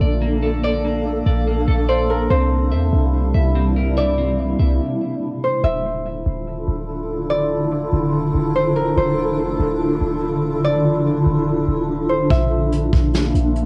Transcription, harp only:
0.00 0.74 C5 medium
0.00 0.69 E5 medium
0.64 2.49 D5 medium
1.89 2.30 C5 medium
2.10 4.22 A#4 medium
2.30 4.28 C5 loud
3.98 5.82 D5 loud
5.44 7.42 C5 medium
5.64 7.36 E5 loud
7.30 9.15 D5 loud
8.56 8.97 C5 medium
8.76 10.88 A#4 medium
8.97 10.95 C5 loud
10.64 12.49 D5 loud
12.09 13.65 C5 medium
12.30 13.65 E5 loud

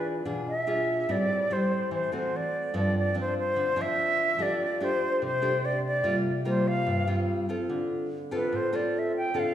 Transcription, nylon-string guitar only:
0.00 0.24 E3 medium
0.00 0.23 D4 medium
0.00 0.23 F4 medium
0.00 0.23 G#4 medium
0.25 1.06 B2 medium
0.25 0.52 D4 medium
0.25 0.52 F4 soft
0.25 0.52 G#4 soft
0.67 1.07 D4 medium
0.67 1.07 F4 medium
0.67 1.07 G#4 medium
1.09 1.89 A2 medium
1.09 1.46 G3 soft
1.09 1.47 C4 medium
1.09 1.47 E4 soft
1.50 2.09 G3 soft
1.50 2.09 C4 soft
1.50 2.09 E4 medium
1.91 2.30 E3 medium
2.12 2.70 A3 soft
2.12 2.71 C4 soft
2.12 2.71 F#4 medium
2.74 3.54 G2 medium
2.74 3.12 F3 soft
2.74 3.12 C4 soft
2.74 3.12 D4 medium
3.14 3.73 F3 soft
3.14 3.73 C4 medium
3.14 3.74 D4 medium
3.56 4.37 D3 medium
3.76 4.35 F3 medium
3.76 4.35 C4 medium
3.76 4.35 D4 medium
4.38 5.19 F3 medium
4.38 4.65 A3 soft
4.38 4.66 D4 soft
4.38 4.66 G4 medium
4.80 5.39 A3 soft
4.80 5.39 D4 soft
4.80 5.39 G4 medium
5.22 6.02 C3 medium
5.42 6.00 A3 medium
5.42 6.01 D4 medium
5.42 6.01 G4 medium
6.04 6.84 C3 medium
6.04 6.30 G3 soft
6.04 6.31 A#3 soft
6.04 6.31 F4 medium
6.45 7.04 G3 soft
6.45 7.04 A#3 medium
6.45 7.04 F4 medium
6.86 7.26 G2 medium
7.07 7.45 G3 medium
7.07 7.45 C4 medium
7.07 7.45 F4 medium
7.49 8.07 C4 soft
7.49 8.08 F4 medium
7.49 8.08 A4 medium
7.70 8.50 D3 medium
8.31 8.69 C4 medium
8.31 8.69 F4 medium
8.31 8.69 A4 medium
8.53 9.32 A2 medium
8.73 9.31 C4 medium
8.73 9.31 F4 medium
8.73 9.31 A4 medium
9.34 9.54 D3 medium
9.34 9.54 C4 soft
9.34 9.54 F4 soft
9.34 9.54 A4 medium

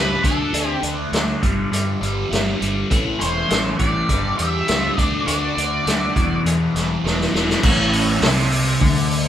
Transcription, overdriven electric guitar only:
0.00 0.22 G2 medium
0.00 0.22 D3 medium
0.00 0.22 G3 medium
0.23 0.51 D3 medium
0.23 0.52 A3 medium
0.23 0.52 D4 loud
0.52 0.80 D3 medium
0.52 0.81 A3 medium
0.52 0.81 D4 medium
0.81 1.11 D3 medium
0.81 1.11 A3 medium
0.81 1.12 D4 medium
1.12 1.40 D3 medium
1.12 1.40 A3 medium
1.12 1.41 D4 medium
1.41 1.70 G2 medium
1.41 1.71 D3 medium
1.41 1.71 G3 medium
1.71 1.99 G2 medium
1.71 2.00 D3 medium
1.71 2.00 G3 loud
2.00 2.29 G2 medium
2.00 2.30 D3 medium
2.00 2.30 G3 medium
2.30 2.58 G2 medium
2.30 2.59 D3 medium
2.30 2.60 G3 medium
2.60 2.88 G2 medium
2.60 2.88 D3 medium
2.60 2.89 G3 medium
2.90 3.18 A2 medium
2.90 3.18 E3 medium
2.90 3.19 A3 medium
3.19 3.47 A2 medium
3.19 3.48 E3 medium
3.19 3.49 A3 medium
3.49 3.77 A2 medium
3.49 3.78 E3 medium
3.49 3.78 A3 medium
3.78 4.07 A2 medium
3.78 4.07 E3 medium
3.78 4.07 A3 medium
4.08 4.37 G2 medium
4.08 4.37 D3 medium
4.08 4.38 G3 loud
4.38 4.66 G2 medium
4.38 4.66 D3 medium
4.38 4.67 G3 medium
4.67 4.95 G2 medium
4.67 4.96 D3 medium
4.67 4.96 G3 medium
4.97 5.25 D3 medium
4.97 5.26 A3 medium
4.97 5.26 D4 medium
5.26 5.55 D3 medium
5.26 5.56 A3 medium
5.26 5.56 D4 medium
5.56 5.84 D3 medium
5.56 5.85 A3 medium
5.56 5.85 D4 medium
5.85 6.13 D3 medium
5.85 6.14 A3 medium
5.85 6.14 D4 medium
6.15 6.44 E2 medium
6.15 6.44 B2 medium
6.15 6.45 E3 loud
6.45 6.73 E2 medium
6.45 6.74 B2 medium
6.45 6.74 E3 loud
6.74 7.02 E2 medium
6.74 7.03 B2 medium
6.74 7.03 E3 medium
7.04 7.32 E2 medium
7.04 7.33 B2 medium
7.04 7.33 E3 medium
7.33 7.61 E2 medium
7.33 7.61 B2 medium
7.33 7.62 E3 medium
7.63 8.22 A2 loud
8.22 8.80 C3 loud
8.80 9.28 D3 loud

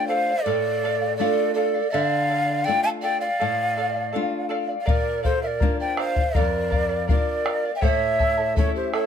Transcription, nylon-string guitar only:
0.00 0.31 A3 medium
0.00 0.32 D4 medium
0.00 0.32 F4 medium
0.46 1.17 A2 medium
1.20 1.79 A3 medium
1.20 1.79 D4 soft
1.20 1.79 F4 medium
1.94 2.65 D3 medium
2.68 3.27 A3 medium
2.68 3.27 D4 soft
2.68 3.27 F4 medium
3.41 4.12 A2 medium
4.15 4.74 A3 soft
4.15 4.74 D4 soft
4.15 4.74 F4 medium
4.89 5.60 A#2 medium
5.62 6.21 A#3 medium
5.62 6.21 D4 soft
5.62 6.21 F4 medium
6.36 7.07 F2 medium
7.10 7.69 A#3 soft
7.10 7.69 D4 soft
7.10 7.69 F4 soft
7.83 8.55 A2 medium
8.58 9.06 A3 medium
8.58 9.06 C#4 soft
8.58 9.06 E4 medium

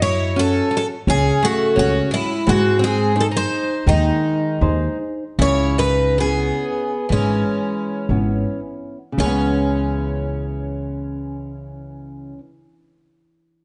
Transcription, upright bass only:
0.00 0.57 F#2 medium
1.07 1.30 C#2 loud
1.77 2.00 C#2 medium
2.48 3.38 G#2 medium
3.87 4.10 D#2 loud
4.61 4.86 D#2 loud
5.39 6.50 C#2 medium
7.10 7.42 G#1 medium
8.09 8.43 G#1 medium
9.18 12.38 C#2 medium

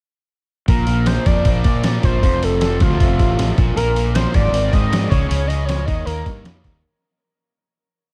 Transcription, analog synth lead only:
0.69 1.08 A#4 loud
1.06 1.27 C5 medium
1.26 1.45 D5 medium
1.47 1.99 D5 medium
2.05 2.21 C5 medium
2.22 2.45 C5 loud
2.44 2.60 A4 medium
2.61 2.78 A4 medium
2.81 3.53 F4 loud
3.76 4.11 A#4 loud
4.14 4.35 C5 loud
4.34 4.53 D5 medium
4.54 4.74 D5 loud
4.73 5.11 D#5 loud
5.09 5.49 C#5 medium
5.47 5.66 D#5 loud
5.65 5.87 C#5 loud
5.85 6.05 D#5 medium
6.05 6.41 A#4 medium

